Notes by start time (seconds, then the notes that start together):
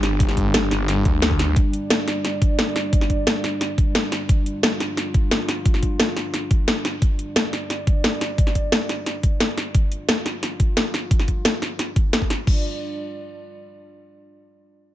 Already playing: G1 G3 D4 G4
0.03 snare, closed hi-hat
0.20 G1, kick, closed hi-hat
0.29 snare
0.37 kick, closed hi-hat
0.54 snare, closed hi-hat
0.71 G1, snare, closed hi-hat
0.88 snare, closed hi-hat
1.05 D2, kick, closed hi-hat
1.22 snare, closed hi-hat
1.31 kick
1.39 snare, closed hi-hat
1.56 D5, kick, closed hi-hat
1.73 closed hi-hat
1.90 snare, closed hi-hat
2.08 snare, closed hi-hat
2.25 snare, closed hi-hat
2.42 kick, closed hi-hat
2.59 snare, closed hi-hat
2.76 snare, closed hi-hat
2.93 kick, closed hi-hat
3.01 snare
3.10 kick, closed hi-hat
3.27 snare, closed hi-hat
3.44 snare, closed hi-hat
3.61 snare, closed hi-hat
3.78 kick, closed hi-hat
3.95 snare, closed hi-hat
4.12 snare, closed hi-hat
4.29 F4, kick, closed hi-hat
4.46 closed hi-hat
4.63 snare, closed hi-hat
4.80 snare, closed hi-hat
4.97 snare, closed hi-hat
5.14 kick, closed hi-hat
5.31 snare, closed hi-hat
5.49 snare, closed hi-hat
5.66 kick, closed hi-hat
5.74 snare
5.83 kick, closed hi-hat
6.00 snare, closed hi-hat
6.17 snare, closed hi-hat
6.34 snare, closed hi-hat
6.51 kick, closed hi-hat
6.68 snare, closed hi-hat
6.85 snare, closed hi-hat
7.02 D5, kick, closed hi-hat
7.19 closed hi-hat
7.36 snare, closed hi-hat
7.53 snare, closed hi-hat
7.70 snare, closed hi-hat
7.87 kick, closed hi-hat
8.04 snare, closed hi-hat
8.21 snare, closed hi-hat
8.38 kick, closed hi-hat
8.47 snare
8.55 kick, closed hi-hat
8.72 snare, closed hi-hat
8.89 snare, closed hi-hat
9.06 snare, closed hi-hat
9.23 kick, closed hi-hat
9.40 snare, closed hi-hat
9.58 snare, closed hi-hat
9.74 F4, kick, closed hi-hat
9.92 closed hi-hat
10.09 snare, closed hi-hat
10.26 snare, closed hi-hat
10.43 snare, closed hi-hat
10.60 kick, closed hi-hat
10.77 snare, closed hi-hat
10.94 snare, closed hi-hat
11.11 kick, closed hi-hat
11.19 snare
11.28 kick, closed hi-hat
11.45 snare, closed hi-hat
11.62 snare, closed hi-hat
11.79 snare, closed hi-hat
11.96 kick, closed hi-hat
12.13 snare, closed hi-hat
12.22 kick
12.30 snare, closed hi-hat
12.47 G3 D4 D5, kick, crash